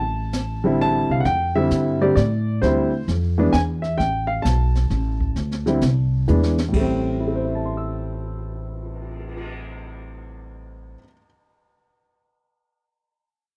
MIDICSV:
0, 0, Header, 1, 5, 480
1, 0, Start_track
1, 0, Key_signature, 0, "minor"
1, 0, Tempo, 457317
1, 1319, Time_signature, 3, 2, 24, 8
1, 14235, End_track
2, 0, Start_track
2, 0, Title_t, "Grand piano"
2, 0, Program_c, 0, 0
2, 0, Note_on_c, 0, 81, 97
2, 670, Note_on_c, 0, 50, 63
2, 672, Note_on_c, 0, 55, 58
2, 679, Note_on_c, 0, 60, 55
2, 691, Note_on_c, 0, 64, 71
2, 839, Note_off_c, 0, 81, 0
2, 855, Note_on_c, 0, 81, 107
2, 1169, Note_on_c, 0, 77, 78
2, 1173, Note_off_c, 0, 81, 0
2, 1263, Note_on_c, 0, 78, 70
2, 1276, Note_off_c, 0, 77, 0
2, 1282, Note_off_c, 0, 50, 0
2, 1284, Note_off_c, 0, 55, 0
2, 1287, Note_off_c, 0, 60, 0
2, 1293, Note_off_c, 0, 64, 0
2, 1311, Note_off_c, 0, 78, 0
2, 1316, Note_on_c, 0, 79, 93
2, 1612, Note_off_c, 0, 79, 0
2, 1631, Note_on_c, 0, 50, 64
2, 1632, Note_on_c, 0, 76, 91
2, 1639, Note_on_c, 0, 55, 62
2, 1645, Note_on_c, 0, 60, 58
2, 1648, Note_on_c, 0, 64, 66
2, 2079, Note_off_c, 0, 76, 0
2, 2081, Note_off_c, 0, 50, 0
2, 2085, Note_off_c, 0, 55, 0
2, 2088, Note_off_c, 0, 60, 0
2, 2089, Note_off_c, 0, 64, 0
2, 2109, Note_on_c, 0, 50, 69
2, 2115, Note_on_c, 0, 55, 61
2, 2116, Note_on_c, 0, 74, 83
2, 2120, Note_on_c, 0, 60, 62
2, 2125, Note_on_c, 0, 67, 72
2, 2246, Note_off_c, 0, 74, 0
2, 2258, Note_off_c, 0, 50, 0
2, 2261, Note_off_c, 0, 55, 0
2, 2262, Note_on_c, 0, 74, 80
2, 2264, Note_off_c, 0, 60, 0
2, 2266, Note_off_c, 0, 67, 0
2, 2715, Note_off_c, 0, 74, 0
2, 2745, Note_on_c, 0, 72, 79
2, 2749, Note_on_c, 0, 50, 62
2, 2755, Note_on_c, 0, 55, 58
2, 2765, Note_on_c, 0, 60, 54
2, 2771, Note_on_c, 0, 64, 71
2, 3038, Note_off_c, 0, 50, 0
2, 3041, Note_off_c, 0, 55, 0
2, 3046, Note_off_c, 0, 60, 0
2, 3049, Note_off_c, 0, 64, 0
2, 3196, Note_off_c, 0, 72, 0
2, 3546, Note_on_c, 0, 52, 66
2, 3551, Note_on_c, 0, 56, 59
2, 3556, Note_on_c, 0, 59, 69
2, 3564, Note_on_c, 0, 62, 74
2, 3696, Note_off_c, 0, 52, 0
2, 3699, Note_off_c, 0, 56, 0
2, 3700, Note_on_c, 0, 80, 97
2, 3701, Note_off_c, 0, 59, 0
2, 3705, Note_off_c, 0, 62, 0
2, 3773, Note_off_c, 0, 80, 0
2, 4010, Note_on_c, 0, 76, 77
2, 4173, Note_on_c, 0, 79, 90
2, 4190, Note_off_c, 0, 76, 0
2, 4484, Note_on_c, 0, 77, 80
2, 4511, Note_off_c, 0, 79, 0
2, 4642, Note_on_c, 0, 81, 83
2, 4667, Note_off_c, 0, 77, 0
2, 5940, Note_on_c, 0, 50, 59
2, 5950, Note_on_c, 0, 55, 49
2, 5952, Note_on_c, 0, 60, 60
2, 5957, Note_on_c, 0, 64, 67
2, 6093, Note_off_c, 0, 50, 0
2, 6098, Note_off_c, 0, 55, 0
2, 6099, Note_off_c, 0, 60, 0
2, 6102, Note_off_c, 0, 64, 0
2, 6538, Note_off_c, 0, 81, 0
2, 6590, Note_on_c, 0, 52, 59
2, 6600, Note_on_c, 0, 56, 55
2, 6606, Note_on_c, 0, 59, 54
2, 6614, Note_on_c, 0, 62, 61
2, 6879, Note_off_c, 0, 52, 0
2, 6884, Note_off_c, 0, 56, 0
2, 6886, Note_off_c, 0, 59, 0
2, 6891, Note_off_c, 0, 62, 0
2, 7014, Note_on_c, 0, 45, 51
2, 7055, Note_on_c, 0, 55, 50
2, 7097, Note_on_c, 0, 57, 55
2, 7136, Note_on_c, 0, 60, 62
2, 7556, Note_on_c, 0, 64, 42
2, 7636, Note_on_c, 0, 69, 42
2, 7721, Note_on_c, 0, 72, 41
2, 7816, Note_on_c, 0, 76, 37
2, 7927, Note_on_c, 0, 81, 36
2, 8036, Note_on_c, 0, 84, 34
2, 8158, Note_on_c, 0, 88, 31
2, 11491, Note_off_c, 0, 64, 0
2, 11503, Note_off_c, 0, 45, 0
2, 11523, Note_off_c, 0, 55, 0
2, 11531, Note_off_c, 0, 69, 0
2, 11544, Note_off_c, 0, 57, 0
2, 11563, Note_off_c, 0, 60, 0
2, 11574, Note_off_c, 0, 72, 0
2, 11621, Note_off_c, 0, 76, 0
2, 11677, Note_off_c, 0, 81, 0
2, 11731, Note_off_c, 0, 84, 0
2, 11792, Note_off_c, 0, 88, 0
2, 14235, End_track
3, 0, Start_track
3, 0, Title_t, "Upright bass"
3, 0, Program_c, 1, 32
3, 0, Note_on_c, 1, 33, 75
3, 1110, Note_off_c, 1, 33, 0
3, 1150, Note_on_c, 1, 36, 57
3, 1304, Note_off_c, 1, 36, 0
3, 1312, Note_on_c, 1, 41, 69
3, 1780, Note_off_c, 1, 41, 0
3, 1794, Note_on_c, 1, 43, 68
3, 2261, Note_off_c, 1, 43, 0
3, 2271, Note_on_c, 1, 45, 92
3, 2739, Note_off_c, 1, 45, 0
3, 2752, Note_on_c, 1, 38, 72
3, 3219, Note_off_c, 1, 38, 0
3, 3231, Note_on_c, 1, 41, 85
3, 3699, Note_off_c, 1, 41, 0
3, 3707, Note_on_c, 1, 40, 86
3, 4177, Note_off_c, 1, 40, 0
3, 4189, Note_on_c, 1, 33, 75
3, 4658, Note_off_c, 1, 33, 0
3, 4670, Note_on_c, 1, 35, 87
3, 5138, Note_off_c, 1, 35, 0
3, 5146, Note_on_c, 1, 33, 79
3, 5617, Note_off_c, 1, 33, 0
3, 5626, Note_on_c, 1, 38, 75
3, 6096, Note_off_c, 1, 38, 0
3, 6108, Note_on_c, 1, 36, 79
3, 6578, Note_off_c, 1, 36, 0
3, 6597, Note_on_c, 1, 40, 81
3, 7062, Note_off_c, 1, 40, 0
3, 7068, Note_on_c, 1, 33, 80
3, 11488, Note_off_c, 1, 33, 0
3, 14235, End_track
4, 0, Start_track
4, 0, Title_t, "Cymbal swell"
4, 7385, Note_on_c, 9, 59, 46
4, 9857, Note_off_c, 9, 59, 0
4, 14235, End_track
5, 0, Start_track
5, 0, Title_t, "Drums"
5, 345, Note_on_c, 9, 44, 58
5, 349, Note_on_c, 9, 38, 64
5, 450, Note_off_c, 9, 44, 0
5, 454, Note_off_c, 9, 38, 0
5, 1311, Note_on_c, 9, 25, 40
5, 1311, Note_on_c, 9, 38, 41
5, 1312, Note_on_c, 9, 36, 26
5, 1416, Note_off_c, 9, 38, 0
5, 1417, Note_off_c, 9, 36, 0
5, 1790, Note_on_c, 9, 44, 54
5, 1793, Note_on_c, 9, 36, 20
5, 1794, Note_on_c, 9, 38, 56
5, 1895, Note_off_c, 9, 44, 0
5, 1898, Note_off_c, 9, 36, 0
5, 1899, Note_off_c, 9, 38, 0
5, 2271, Note_on_c, 9, 38, 43
5, 2272, Note_on_c, 9, 36, 23
5, 2376, Note_off_c, 9, 38, 0
5, 2377, Note_off_c, 9, 36, 0
5, 2752, Note_on_c, 9, 36, 24
5, 2756, Note_off_c, 9, 25, 0
5, 2756, Note_on_c, 9, 25, 47
5, 2756, Note_on_c, 9, 38, 39
5, 2857, Note_off_c, 9, 36, 0
5, 2860, Note_off_c, 9, 38, 0
5, 3231, Note_on_c, 9, 36, 16
5, 3233, Note_on_c, 9, 38, 41
5, 3336, Note_off_c, 9, 36, 0
5, 3338, Note_off_c, 9, 38, 0
5, 3704, Note_on_c, 9, 44, 50
5, 3708, Note_on_c, 9, 38, 56
5, 3709, Note_on_c, 9, 36, 21
5, 3809, Note_off_c, 9, 44, 0
5, 3813, Note_off_c, 9, 38, 0
5, 3814, Note_off_c, 9, 36, 0
5, 4026, Note_on_c, 9, 38, 35
5, 4130, Note_off_c, 9, 38, 0
5, 4190, Note_on_c, 9, 36, 24
5, 4195, Note_off_c, 9, 25, 0
5, 4195, Note_on_c, 9, 25, 50
5, 4195, Note_on_c, 9, 38, 40
5, 4295, Note_off_c, 9, 36, 0
5, 4299, Note_off_c, 9, 38, 0
5, 4668, Note_on_c, 9, 44, 59
5, 4669, Note_on_c, 9, 36, 22
5, 4672, Note_on_c, 9, 38, 59
5, 4773, Note_off_c, 9, 44, 0
5, 4774, Note_off_c, 9, 36, 0
5, 4777, Note_off_c, 9, 38, 0
5, 4987, Note_on_c, 9, 38, 35
5, 5092, Note_off_c, 9, 38, 0
5, 5144, Note_on_c, 9, 38, 37
5, 5146, Note_on_c, 9, 36, 18
5, 5249, Note_off_c, 9, 38, 0
5, 5251, Note_off_c, 9, 36, 0
5, 5463, Note_on_c, 9, 36, 42
5, 5568, Note_off_c, 9, 36, 0
5, 5623, Note_off_c, 9, 25, 0
5, 5623, Note_on_c, 9, 25, 45
5, 5623, Note_on_c, 9, 38, 43
5, 5626, Note_on_c, 9, 36, 25
5, 5728, Note_off_c, 9, 38, 0
5, 5731, Note_off_c, 9, 36, 0
5, 5786, Note_on_c, 9, 38, 26
5, 5891, Note_off_c, 9, 38, 0
5, 5945, Note_on_c, 9, 38, 39
5, 6050, Note_off_c, 9, 38, 0
5, 6100, Note_on_c, 9, 44, 59
5, 6104, Note_on_c, 9, 38, 58
5, 6106, Note_on_c, 9, 36, 25
5, 6205, Note_off_c, 9, 44, 0
5, 6209, Note_off_c, 9, 38, 0
5, 6211, Note_off_c, 9, 36, 0
5, 6587, Note_on_c, 9, 44, 47
5, 6692, Note_off_c, 9, 44, 0
5, 6751, Note_on_c, 9, 38, 55
5, 6856, Note_off_c, 9, 38, 0
5, 6908, Note_on_c, 9, 38, 65
5, 7013, Note_off_c, 9, 38, 0
5, 7069, Note_on_c, 9, 36, 49
5, 7069, Note_on_c, 9, 49, 58
5, 7174, Note_off_c, 9, 36, 0
5, 7174, Note_off_c, 9, 49, 0
5, 7582, Note_off_c, 9, 25, 0
5, 14235, End_track
0, 0, End_of_file